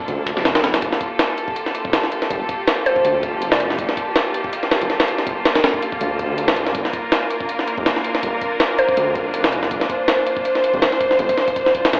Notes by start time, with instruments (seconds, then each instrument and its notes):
Already playing: string section A#3 D4 F4 A4
0.08 detuned saw bass D2, kick, closed hi-hat
0.27 kick, closed hi-hat
0.37 detuned saw bass F1, snare
0.45 detuned saw bass F1, snare, closed hi-hat
0.55 snare, closed hi-hat
0.64 detuned saw bass G1, snare, closed hi-hat
0.74 detuned saw bass G1, snare, closed hi-hat
0.82 detuned saw bass G1, string section A#3 F4 G4, kick, closed hi-hat
0.92 snare
1.01 kick, closed hi-hat
1.19 snare, closed hi-hat
1.38 closed hi-hat
1.48 kick
1.56 closed hi-hat
1.66 snare
1.75 closed hi-hat
1.85 detuned saw bass F1, kick
1.93 snare, closed hi-hat
2.03 snare
2.12 closed hi-hat
2.22 snare
2.30 detuned saw bass G1, kick, closed hi-hat
2.49 kick, closed hi-hat
2.67 snare, closed hi-hat
2.86 synth pluck C5, closed hi-hat
2.96 kick
3.05 detuned saw bass D2, closed hi-hat
3.23 kick, closed hi-hat
3.33 detuned saw bass G1
3.42 detuned saw bass F1, closed hi-hat
3.52 synth pluck D5, snare
3.60 closed hi-hat
3.70 snare
3.79 detuned saw bass G1, kick, closed hi-hat
3.89 snare
3.97 kick, closed hi-hat
4.16 snare, closed hi-hat
4.34 closed hi-hat
4.44 kick
4.53 closed hi-hat
4.63 snare
4.71 snare
4.81 detuned saw bass F1, closed hi-hat
4.90 snare
5.00 snare
5.08 closed hi-hat
5.18 snare
5.27 detuned saw bass G1, kick, closed hi-hat
5.45 snare, closed hi-hat
5.55 snare, closed hi-hat
5.64 snare, closed hi-hat
5.74 kick
5.82 closed hi-hat
5.92 kick
6.01 detuned saw bass D2, closed hi-hat
6.19 kick, closed hi-hat
6.38 closed hi-hat
6.48 detuned saw bass G1, snare
6.56 detuned saw bass D2, closed hi-hat
6.66 detuned saw bass C2, snare
6.75 detuned saw bass G1, string section D4 A#4, kick, closed hi-hat
6.85 snare
6.93 kick, closed hi-hat
7.12 snare, closed hi-hat
7.30 closed hi-hat
7.41 kick
7.49 closed hi-hat
7.59 snare
7.67 closed hi-hat
7.78 detuned saw bass F1, kick
7.86 snare, closed hi-hat
7.96 snare
8.04 closed hi-hat
8.15 snare
8.23 detuned saw bass G1, kick, closed hi-hat
8.41 kick, closed hi-hat
8.60 snare, closed hi-hat
8.78 synth pluck C5, closed hi-hat
8.89 kick
8.97 detuned saw bass D2, closed hi-hat
9.15 kick, closed hi-hat
9.26 detuned saw bass G1
9.34 detuned saw bass F1, closed hi-hat
9.44 snare
9.52 closed hi-hat
9.63 snare
9.71 detuned saw bass G1, string section C5, kick, closed hi-hat
9.81 snare
9.90 kick, closed hi-hat
10.08 snare, closed hi-hat
10.27 closed hi-hat
10.37 kick
10.45 closed hi-hat
10.55 snare
10.64 closed hi-hat
10.74 detuned saw bass F1, kick
10.82 snare, closed hi-hat
10.92 snare
11.01 kick, closed hi-hat
11.11 snare
11.19 detuned saw bass G1, kick, closed hi-hat
11.29 kick, closed hi-hat
11.38 snare
11.48 kick, closed hi-hat
11.56 kick, closed hi-hat
11.66 snare
11.75 kick, closed hi-hat
11.85 snare, closed hi-hat
11.93 detuned saw bass D2, snare, closed hi-hat